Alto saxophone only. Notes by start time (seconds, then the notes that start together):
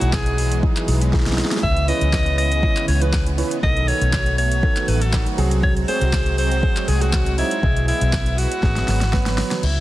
Already playing: F#4
0.13 G#4
1.63 E5
1.88 D#5
2.38 D#5
2.88 C#5
3.01 B4
3.63 D#5
3.88 C#5
4.38 C#5
4.88 B4
5.01 A4
5.63 C#5
5.88 C5
6.38 C5
6.88 G#4
7.01 F#4
7.38 E4
7.88 E4
8.38 F#4
9.63 E4